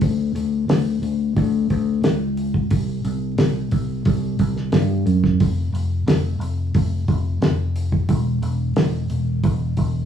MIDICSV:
0, 0, Header, 1, 3, 480
1, 0, Start_track
1, 0, Tempo, 673401
1, 11, Time_signature, 4, 2, 24, 8
1, 7165, End_track
2, 0, Start_track
2, 0, Title_t, "Fingered electric bass"
2, 0, Program_c, 0, 33
2, 10, Note_on_c, 0, 38, 88
2, 230, Note_off_c, 0, 38, 0
2, 249, Note_on_c, 0, 38, 84
2, 469, Note_off_c, 0, 38, 0
2, 485, Note_on_c, 0, 38, 84
2, 707, Note_off_c, 0, 38, 0
2, 727, Note_on_c, 0, 38, 78
2, 948, Note_off_c, 0, 38, 0
2, 973, Note_on_c, 0, 38, 88
2, 1191, Note_off_c, 0, 38, 0
2, 1214, Note_on_c, 0, 38, 92
2, 1432, Note_off_c, 0, 38, 0
2, 1437, Note_on_c, 0, 37, 79
2, 1896, Note_off_c, 0, 37, 0
2, 1933, Note_on_c, 0, 36, 90
2, 2152, Note_off_c, 0, 36, 0
2, 2170, Note_on_c, 0, 36, 83
2, 2390, Note_off_c, 0, 36, 0
2, 2411, Note_on_c, 0, 36, 78
2, 2630, Note_off_c, 0, 36, 0
2, 2652, Note_on_c, 0, 36, 82
2, 2871, Note_off_c, 0, 36, 0
2, 2896, Note_on_c, 0, 36, 85
2, 3113, Note_off_c, 0, 36, 0
2, 3131, Note_on_c, 0, 36, 86
2, 3350, Note_off_c, 0, 36, 0
2, 3366, Note_on_c, 0, 43, 77
2, 3588, Note_off_c, 0, 43, 0
2, 3605, Note_on_c, 0, 42, 85
2, 3827, Note_off_c, 0, 42, 0
2, 3852, Note_on_c, 0, 29, 85
2, 4070, Note_off_c, 0, 29, 0
2, 4080, Note_on_c, 0, 29, 85
2, 4304, Note_off_c, 0, 29, 0
2, 4322, Note_on_c, 0, 29, 85
2, 4545, Note_off_c, 0, 29, 0
2, 4555, Note_on_c, 0, 29, 78
2, 4781, Note_off_c, 0, 29, 0
2, 4809, Note_on_c, 0, 29, 88
2, 5028, Note_off_c, 0, 29, 0
2, 5048, Note_on_c, 0, 29, 82
2, 5268, Note_off_c, 0, 29, 0
2, 5283, Note_on_c, 0, 29, 82
2, 5737, Note_off_c, 0, 29, 0
2, 5768, Note_on_c, 0, 28, 85
2, 5988, Note_off_c, 0, 28, 0
2, 6002, Note_on_c, 0, 28, 86
2, 6224, Note_off_c, 0, 28, 0
2, 6247, Note_on_c, 0, 28, 83
2, 6467, Note_off_c, 0, 28, 0
2, 6488, Note_on_c, 0, 28, 76
2, 6707, Note_off_c, 0, 28, 0
2, 6728, Note_on_c, 0, 28, 95
2, 6947, Note_off_c, 0, 28, 0
2, 6969, Note_on_c, 0, 28, 91
2, 7165, Note_off_c, 0, 28, 0
2, 7165, End_track
3, 0, Start_track
3, 0, Title_t, "Drums"
3, 9, Note_on_c, 9, 46, 76
3, 12, Note_on_c, 9, 36, 96
3, 80, Note_off_c, 9, 46, 0
3, 84, Note_off_c, 9, 36, 0
3, 255, Note_on_c, 9, 46, 56
3, 326, Note_off_c, 9, 46, 0
3, 493, Note_on_c, 9, 46, 80
3, 497, Note_on_c, 9, 38, 112
3, 565, Note_off_c, 9, 46, 0
3, 568, Note_off_c, 9, 38, 0
3, 733, Note_on_c, 9, 46, 53
3, 804, Note_off_c, 9, 46, 0
3, 973, Note_on_c, 9, 46, 70
3, 974, Note_on_c, 9, 36, 106
3, 1044, Note_off_c, 9, 46, 0
3, 1045, Note_off_c, 9, 36, 0
3, 1213, Note_on_c, 9, 46, 53
3, 1214, Note_on_c, 9, 36, 69
3, 1284, Note_off_c, 9, 46, 0
3, 1285, Note_off_c, 9, 36, 0
3, 1451, Note_on_c, 9, 46, 69
3, 1454, Note_on_c, 9, 38, 104
3, 1522, Note_off_c, 9, 46, 0
3, 1526, Note_off_c, 9, 38, 0
3, 1692, Note_on_c, 9, 46, 52
3, 1763, Note_off_c, 9, 46, 0
3, 1812, Note_on_c, 9, 36, 78
3, 1883, Note_off_c, 9, 36, 0
3, 1928, Note_on_c, 9, 46, 69
3, 1932, Note_on_c, 9, 36, 105
3, 2000, Note_off_c, 9, 46, 0
3, 2004, Note_off_c, 9, 36, 0
3, 2172, Note_on_c, 9, 46, 57
3, 2243, Note_off_c, 9, 46, 0
3, 2409, Note_on_c, 9, 46, 76
3, 2413, Note_on_c, 9, 38, 113
3, 2481, Note_off_c, 9, 46, 0
3, 2484, Note_off_c, 9, 38, 0
3, 2647, Note_on_c, 9, 46, 55
3, 2653, Note_on_c, 9, 36, 77
3, 2719, Note_off_c, 9, 46, 0
3, 2724, Note_off_c, 9, 36, 0
3, 2889, Note_on_c, 9, 46, 72
3, 2893, Note_on_c, 9, 36, 99
3, 2960, Note_off_c, 9, 46, 0
3, 2964, Note_off_c, 9, 36, 0
3, 3129, Note_on_c, 9, 46, 57
3, 3133, Note_on_c, 9, 36, 71
3, 3200, Note_off_c, 9, 46, 0
3, 3204, Note_off_c, 9, 36, 0
3, 3252, Note_on_c, 9, 38, 30
3, 3324, Note_off_c, 9, 38, 0
3, 3366, Note_on_c, 9, 46, 76
3, 3370, Note_on_c, 9, 38, 104
3, 3437, Note_off_c, 9, 46, 0
3, 3441, Note_off_c, 9, 38, 0
3, 3612, Note_on_c, 9, 46, 53
3, 3683, Note_off_c, 9, 46, 0
3, 3733, Note_on_c, 9, 36, 76
3, 3737, Note_on_c, 9, 38, 29
3, 3805, Note_off_c, 9, 36, 0
3, 3809, Note_off_c, 9, 38, 0
3, 3851, Note_on_c, 9, 46, 78
3, 3853, Note_on_c, 9, 36, 105
3, 3922, Note_off_c, 9, 46, 0
3, 3925, Note_off_c, 9, 36, 0
3, 4096, Note_on_c, 9, 46, 60
3, 4168, Note_off_c, 9, 46, 0
3, 4331, Note_on_c, 9, 46, 82
3, 4335, Note_on_c, 9, 38, 114
3, 4403, Note_off_c, 9, 46, 0
3, 4406, Note_off_c, 9, 38, 0
3, 4571, Note_on_c, 9, 46, 56
3, 4642, Note_off_c, 9, 46, 0
3, 4808, Note_on_c, 9, 46, 76
3, 4810, Note_on_c, 9, 36, 108
3, 4879, Note_off_c, 9, 46, 0
3, 4882, Note_off_c, 9, 36, 0
3, 5048, Note_on_c, 9, 46, 54
3, 5049, Note_on_c, 9, 36, 78
3, 5119, Note_off_c, 9, 46, 0
3, 5121, Note_off_c, 9, 36, 0
3, 5289, Note_on_c, 9, 46, 71
3, 5292, Note_on_c, 9, 38, 109
3, 5360, Note_off_c, 9, 46, 0
3, 5363, Note_off_c, 9, 38, 0
3, 5529, Note_on_c, 9, 46, 56
3, 5600, Note_off_c, 9, 46, 0
3, 5648, Note_on_c, 9, 36, 80
3, 5719, Note_off_c, 9, 36, 0
3, 5765, Note_on_c, 9, 46, 66
3, 5766, Note_on_c, 9, 36, 99
3, 5836, Note_off_c, 9, 46, 0
3, 5837, Note_off_c, 9, 36, 0
3, 6006, Note_on_c, 9, 46, 55
3, 6077, Note_off_c, 9, 46, 0
3, 6245, Note_on_c, 9, 46, 79
3, 6249, Note_on_c, 9, 38, 109
3, 6317, Note_off_c, 9, 46, 0
3, 6320, Note_off_c, 9, 38, 0
3, 6485, Note_on_c, 9, 46, 53
3, 6556, Note_off_c, 9, 46, 0
3, 6725, Note_on_c, 9, 46, 69
3, 6726, Note_on_c, 9, 36, 104
3, 6797, Note_off_c, 9, 36, 0
3, 6797, Note_off_c, 9, 46, 0
3, 6963, Note_on_c, 9, 46, 55
3, 6966, Note_on_c, 9, 36, 74
3, 7034, Note_off_c, 9, 46, 0
3, 7038, Note_off_c, 9, 36, 0
3, 7165, End_track
0, 0, End_of_file